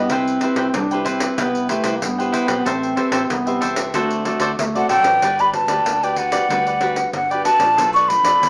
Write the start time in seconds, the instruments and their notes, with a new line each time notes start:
Already playing: duduk B3, nylon-string guitar E4 G4 B4
0.10 fingered electric bass C2, duduk C4, nylon-string guitar C4, cavaquinho E4 B4 C5 G5, pandeiro
0.27 pandeiro
0.41 cavaquinho E4 B4 C5 G5, nylon-string guitar E4 G4 B4, pandeiro
0.56 fingered electric bass C2, cavaquinho E4 B4 C5 G5, pandeiro
0.74 fingered electric bass C2, nylon-string guitar G3, duduk D4, pandeiro
0.91 nylon-string guitar E4 G4 B4, cavaquinho B4 C5 G5, pandeiro
1.02 duduk D4, cavaquinho E4 C5
1.06 duduk C4, cavaquinho B4 G5, pandeiro
1.20 pandeiro
1.38 fingered electric bass C2, duduk B3, cavaquinho E4 B4 G5, nylon-string guitar E4 G4 B4, pandeiro
1.55 pandeiro
1.69 duduk A3, cavaquinho E4 B4 C5 G5, nylon-string guitar E4 G4 B4, pandeiro
1.84 fingered electric bass C2, cavaquinho E4 B4 C5 G5, pandeiro
1.97 duduk A#3
2.02 fingered electric bass G2, nylon-string guitar G3, duduk B3, pandeiro
2.18 nylon-string guitar E4 G4 B4, cavaquinho B4 C5 G5, pandeiro
2.32 cavaquinho E4 B4 C5 G5, pandeiro
2.47 fingered electric bass B1, nylon-string guitar C4 G4 B4, cavaquinho B4 C5 G5, pandeiro
2.65 fingered electric bass A1, nylon-string guitar A3, duduk C4, cavaquinho A4 C5 E5 G5, pandeiro
2.83 pandeiro
2.96 nylon-string guitar C4 G4 B4, cavaquinho A4 C5 E5 G5, pandeiro
3.11 fingered electric bass A1, cavaquinho A4 C5 E5 G5, pandeiro
3.30 fingered electric bass C2, nylon-string guitar E3, duduk B3, pandeiro
3.46 nylon-string guitar C4 G4 B4, cavaquinho C5 E5 G5, pandeiro
3.61 cavaquinho A4 C5 E5 G5, pandeiro
3.76 pandeiro
3.93 fingered electric bass D2, nylon-string guitar D3 A3 C4 F#4, duduk A3, cavaquinho F#4 A4 C5 D5, pandeiro
4.10 pandeiro
4.25 nylon-string guitar A3 C4 F#4, cavaquinho F#4 A4 C5 D5, pandeiro
4.40 fingered electric bass D2, cavaquinho F#4 A4 C5 D5, pandeiro
4.58 fingered electric bass D2, nylon-string guitar A2, duduk A3, flute E5, pandeiro
4.75 fingered electric bass C2, nylon-string guitar A3 C4 F#4, cavaquinho A4 C5 D5, flute F#5, pandeiro
4.89 fingered electric bass B1, duduk F#3, cavaquinho F#4 A4 C5 D5, flute G5, pandeiro
5.03 fingered electric bass A1, nylon-string guitar D4 B4, cavaquinho A4 C5 D5, pandeiro
5.21 fingered electric bass G1, nylon-string guitar G3, cavaquinho F#4 G4 B4 D5, pandeiro
5.39 cavaquinho G4 B4 D5, flute B5, pandeiro
5.53 nylon-string guitar D4 F#4 B4, flute A5, muted cavaquinho stroke, pandeiro
5.67 fingered electric bass D2, cavaquinho G4 B4 D5, pandeiro
5.85 fingered electric bass D2, nylon-string guitar D3, pandeiro
6.03 nylon-string guitar D4 F#4 B4, cavaquinho G4 B4 D5, flute G5, pandeiro
6.16 cavaquinho F#4 G4 B4 D5, flute F#5, pandeiro
6.32 nylon-string guitar D4 F#4 B4, cavaquinho G4 B4 D5, pandeiro
6.49 fingered electric bass D2, nylon-string guitar G3 D4 F#4 B4, cavaquinho F#4 G4 B4 D5, pandeiro
6.67 cavaquinho G4 B4 D5, pandeiro
6.81 nylon-string guitar D4 F#4 B4, cavaquinho F#4 G4 B4 D5, pandeiro
6.96 muted cavaquinho stroke, pandeiro
7.13 fingered electric bass G1, nylon-string guitar D3, flute F#5, pandeiro
7.30 nylon-string guitar D4 F#4 B4, cavaquinho G4 B4 D5, flute G5, pandeiro
7.45 cavaquinho F#4 G4 B4 D5, flute A5, pandeiro
7.59 fingered electric bass A1, nylon-string guitar A3 D4 F4, cavaquinho G4 B4 D5, pandeiro
7.77 fingered electric bass B1, nylon-string guitar B2, cavaquinho F4 A4 B4 D5, pandeiro
7.94 cavaquinho A4 B4 D5, flute C#6, pandeiro
8.08 nylon-string guitar A3 D4 F4, flute B5, muted cavaquinho stroke, pandeiro
8.23 fingered electric bass F2, cavaquinho A4 B4 D5, pandeiro
8.42 fingered electric bass D#2, nylon-string guitar B2, pandeiro